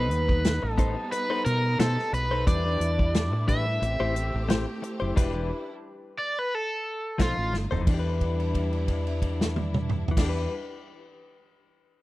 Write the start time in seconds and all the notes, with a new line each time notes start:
Already playing: B1 G3 B3 D#4 A4 B4 C5
0.11 D#2, muted clean electric guitar stroke, closed hi-hat
0.29 muted clean electric guitar stroke, kick
0.45 snare, closed hi-hat
0.63 A1, muted clean electric guitar stroke
0.72 A4
0.78 B3 D#4 A4 C5, kick, closed hi-hat
0.96 muted clean electric guitar stroke
1.12 B4, muted clean electric guitar stroke, closed hi-hat
1.30 B3 D#4 A4 C5
1.45 B2 A#4, muted clean electric guitar stroke, closed hi-hat
1.79 B2 B3 D#4 A4 C5, snare, closed hi-hat
1.98 muted clean electric guitar stroke, snare
2.13 B1 B4, muted clean electric guitar stroke, closed hi-hat
2.31 D#4 A4 C5
2.47 E2 E3 G3 D4 E4 G4 B4 D5, kick, closed hi-hat
2.65 E3 D4 G4 B4
2.80 E2, muted clean electric guitar stroke, closed hi-hat
2.99 muted clean electric guitar stroke, kick
3.15 snare, closed hi-hat
3.32 A2, muted clean electric guitar stroke
3.48 E3 D4 G4 B4 E5, kick, closed hi-hat
3.66 muted clean electric guitar stroke
3.82 A1 A3 C4 G4, muted clean electric guitar stroke, closed hi-hat
4.00 A1 A3 E4 G4 C5
4.15 muted clean electric guitar stroke, closed hi-hat
4.34 A1
4.49 A3 E4 G4 C5, snare, closed hi-hat
4.67 muted clean electric guitar stroke
4.82 muted clean electric guitar stroke, closed hi-hat
5.00 F#1 E4 G4 C5
5.16 E1 E3 G3 D4 E4 G4 B4, kick, closed hi-hat, crash
5.34 E3 D4 G4 B4
6.18 D5
6.39 B4
6.55 A4
7.18 B1 F3 A3 D#4 F4 A4 C5, kick, snare, closed hi-hat
7.37 A1, muted clean electric guitar stroke
7.52 G1, muted clean electric guitar stroke, snare
7.71 F1 D#4 A4 C5, floor tom
7.81 E3
7.86 E2 G3 D4 E4, kick, crash
7.94 G4
7.99 B4
8.21 kick, crash
8.40 crash
8.55 kick, crash
8.73 crash
8.88 kick, crash
9.07 crash
9.22 kick, crash
9.41 snare
9.56 high tom
9.74 mid tom
9.89 mid tom
10.08 E3, floor tom
10.16 E2 G3 D4 E4, kick, snare, crash
10.24 G4
10.29 B4